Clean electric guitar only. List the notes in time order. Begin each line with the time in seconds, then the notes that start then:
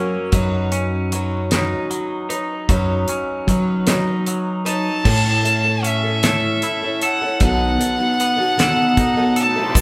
Already playing: F#2 F#3 A#3 C#4
0.32 F#3
0.72 C#4
1.12 F#3
1.52 D#4
1.91 F#3
2.30 D#4
2.69 F#3
3.09 C#4
3.49 F#3
3.87 D#4
4.27 F#3
4.66 D#4
5.05 A2
5.83 C#4
6.23 A4
6.63 E4
7.03 A4
7.42 B2
8.21 B3
8.60 A4
8.98 D#4
9.36 A4
9.75 B2